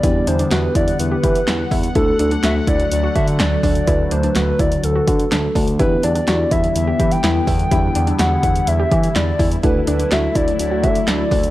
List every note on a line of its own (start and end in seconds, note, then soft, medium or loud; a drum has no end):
0.00 0.20 E2 loud
0.00 1.92 D3 medium
0.00 1.92 G3 medium
0.00 1.92 B3 medium
0.00 1.92 D4 medium
0.00 0.21 E4 medium
0.00 1.92 E4 medium
0.00 1.92 G4 medium
0.00 0.29 D5 loud
0.00 5.75 F#5 medium
0.00 kick loud
0.00 closed hi-hat medium
0.27 0.44 E2 loud
0.27 0.36 D4 medium
0.27 0.51 C5 medium
0.27 closed hi-hat medium
0.39 0.48 D4 medium
0.39 closed hi-hat medium
0.51 0.68 E2 loud
0.51 0.69 F#4 medium
0.51 0.74 B4 medium
0.51 snare loud
0.51 clap medium
0.51 closed hi-hat medium
0.75 0.92 E2 loud
0.75 0.93 E4 medium
0.75 0.98 D5 medium
0.75 kick medium
0.75 closed hi-hat medium
0.88 closed hi-hat medium
0.99 1.16 E2 loud
0.99 1.68 B4 medium
0.99 closed hi-hat medium
1.11 1.20 G4 medium
1.24 1.40 E3 loud
1.24 1.41 G4 medium
1.24 kick loud
1.24 closed hi-hat medium
1.35 closed hi-hat medium
1.47 1.64 E2 loud
1.47 1.65 E4 medium
1.47 snare loud
1.47 clap medium
1.47 closed hi-hat medium
1.71 1.88 E2 loud
1.71 1.89 E4 medium
1.71 kick medium
1.71 open hi-hat medium
1.83 closed hi-hat medium
1.95 2.12 D2 loud
1.95 11.50 D3 medium
1.95 5.76 F#3 medium
1.95 3.84 A3 medium
1.95 5.76 A3 medium
1.95 3.84 D4 medium
1.95 2.13 E4 medium
1.95 3.84 F#4 medium
1.95 2.18 A4 loud
1.95 3.84 A4 medium
1.95 kick loud
1.95 closed hi-hat medium
2.19 2.36 D2 loud
2.19 2.28 D4 medium
2.19 2.30 A4 medium
2.19 closed hi-hat medium
2.31 2.40 D4 medium
2.31 closed hi-hat medium
2.43 2.60 D2 loud
2.43 2.61 F#4 medium
2.43 2.54 E5 loud
2.43 snare loud
2.43 clap medium
2.43 closed hi-hat medium
2.67 2.84 D2 loud
2.67 2.85 E4 medium
2.67 2.90 D5 loud
2.67 kick medium
2.67 closed hi-hat medium
2.80 closed hi-hat medium
2.92 3.08 D2 loud
2.92 3.14 D5 loud
2.92 closed hi-hat medium
3.03 3.12 F#4 medium
3.15 3.41 D3 loud
3.15 3.33 F#4 medium
3.15 3.26 E5 loud
3.15 kick loud
3.15 closed hi-hat medium
3.28 closed hi-hat medium
3.39 3.56 D2 loud
3.39 3.57 D4 medium
3.39 3.62 D5 loud
3.39 snare loud
3.39 clap medium
3.39 closed hi-hat medium
3.63 3.80 D2 loud
3.63 3.81 D4 medium
3.63 4.13 D5 loud
3.63 kick medium
3.63 open hi-hat medium
3.75 closed hi-hat medium
3.87 4.04 D2 loud
3.87 5.52 A3 medium
3.87 5.52 D4 medium
3.87 4.05 E4 medium
3.87 5.52 F#4 medium
3.87 5.52 B4 medium
3.87 kick loud
3.87 closed hi-hat medium
4.11 4.29 D2 loud
4.11 4.20 D4 medium
4.11 4.35 C5 medium
4.11 closed hi-hat medium
4.23 4.32 D4 medium
4.23 closed hi-hat medium
4.35 4.52 D2 loud
4.35 4.53 F#4 medium
4.35 4.61 B4 medium
4.35 snare loud
4.35 clap medium
4.35 closed hi-hat medium
4.59 4.76 D2 loud
4.59 4.77 E4 medium
4.59 4.85 D5 loud
4.59 kick medium
4.59 closed hi-hat medium
4.72 closed hi-hat medium
4.84 5.00 D2 loud
4.84 5.55 A4 medium
4.84 closed hi-hat medium
4.96 5.04 F#4 medium
5.08 5.24 D3 loud
5.08 5.25 F#4 medium
5.08 kick loud
5.08 closed hi-hat medium
5.20 closed hi-hat medium
5.31 5.48 D2 loud
5.31 5.49 D4 medium
5.31 snare loud
5.31 clap medium
5.31 closed hi-hat medium
5.55 5.81 D2 loud
5.55 5.79 A3 medium
5.55 5.73 D4 medium
5.55 5.78 D4 medium
5.55 5.79 F#4 medium
5.55 5.79 A4 medium
5.55 kick loud
5.55 open hi-hat medium
5.68 closed hi-hat medium
5.79 5.96 E2 loud
5.79 9.60 G3 medium
5.79 9.60 B3 medium
5.79 7.68 B3 medium
5.79 7.68 D4 medium
5.79 7.70 E4 medium
5.79 5.97 E4 medium
5.79 7.68 E4 medium
5.79 7.68 G4 medium
5.79 6.05 B4 loud
5.79 kick loud
5.79 closed hi-hat medium
6.03 6.20 E2 loud
6.03 6.12 D4 medium
6.03 6.53 D5 loud
6.03 closed hi-hat medium
6.15 6.24 D4 medium
6.15 closed hi-hat medium
6.28 6.44 E2 loud
6.28 6.45 F#4 medium
6.28 snare loud
6.28 clap medium
6.28 closed hi-hat medium
6.51 6.68 E2 loud
6.51 6.69 E4 medium
6.51 6.75 E5 loud
6.51 kick medium
6.51 closed hi-hat medium
6.64 closed hi-hat medium
6.75 6.92 E2 loud
6.75 7.13 E5 loud
6.75 closed hi-hat medium
6.87 6.96 G4 medium
6.99 7.16 E3 loud
6.99 7.17 G4 medium
6.99 kick loud
6.99 closed hi-hat medium
7.11 7.47 G5 loud
7.11 closed hi-hat medium
7.23 7.40 E2 loud
7.23 7.41 E4 medium
7.23 snare loud
7.23 clap loud
7.23 closed hi-hat medium
7.47 7.64 E2 loud
7.47 7.65 E4 medium
7.47 8.15 G5 loud
7.47 kick loud
7.47 open hi-hat medium
7.59 closed hi-hat soft
7.71 7.88 E2 loud
7.71 9.60 B3 medium
7.71 9.60 D4 medium
7.71 7.89 E4 loud
7.71 11.50 E4 medium
7.71 9.60 E4 medium
7.71 9.60 G4 medium
7.71 kick loud
7.71 closed hi-hat medium
7.95 8.12 E2 loud
7.95 8.04 D4 medium
7.95 closed hi-hat medium
8.07 8.16 D4 medium
8.07 closed hi-hat medium
8.19 8.36 E2 loud
8.19 8.37 F#4 medium
8.19 8.69 F#5 loud
8.19 snare loud
8.19 clap medium
8.19 closed hi-hat medium
8.43 8.60 E2 loud
8.43 8.61 E4 medium
8.43 kick medium
8.43 closed hi-hat medium
8.56 closed hi-hat medium
8.67 8.84 E2 loud
8.67 9.15 E5 loud
8.67 closed hi-hat medium
8.79 8.88 G4 medium
8.92 9.08 E3 loud
8.92 9.09 G4 medium
8.92 kick loud
8.92 closed hi-hat medium
9.03 closed hi-hat medium
9.15 9.32 E2 medium
9.15 9.33 E4 medium
9.15 9.49 D5 loud
9.15 snare loud
9.15 clap loud
9.15 closed hi-hat medium
9.39 9.56 E2 loud
9.39 9.57 E4 medium
9.39 kick loud
9.39 open hi-hat medium
9.52 closed hi-hat medium
9.63 9.80 D2 loud
9.63 11.50 F#3 medium
9.63 11.50 A3 medium
9.63 11.50 D4 medium
9.63 9.81 E4 medium
9.63 11.50 F#4 medium
9.63 11.50 A4 medium
9.63 9.86 B4 loud
9.63 kick loud
9.63 closed hi-hat medium
9.87 10.04 D2 loud
9.87 9.96 D4 medium
9.87 10.13 B4 medium
9.87 closed hi-hat medium
9.99 10.08 D4 medium
9.99 closed hi-hat medium
10.11 10.28 D2 loud
10.11 10.29 F#4 medium
10.11 10.37 E5 loud
10.11 snare loud
10.11 clap medium
10.11 closed hi-hat medium
10.35 10.52 D2 loud
10.35 10.53 E4 medium
10.35 10.59 D5 loud
10.35 kick medium
10.35 closed hi-hat medium
10.48 closed hi-hat medium
10.59 10.85 D2 loud
10.59 10.85 D5 medium
10.59 closed hi-hat medium
10.71 10.80 F#4 medium
10.83 11.00 D3 loud
10.83 11.01 F#4 medium
10.83 11.07 E5 loud
10.83 kick loud
10.83 closed hi-hat medium
10.95 closed hi-hat medium
11.07 11.24 D2 loud
11.07 11.25 D4 medium
11.07 11.50 D5 loud
11.07 snare loud
11.07 clap medium
11.07 closed hi-hat medium
11.31 11.50 D2 loud
11.31 11.49 D4 medium
11.31 kick medium
11.31 open hi-hat medium
11.43 closed hi-hat medium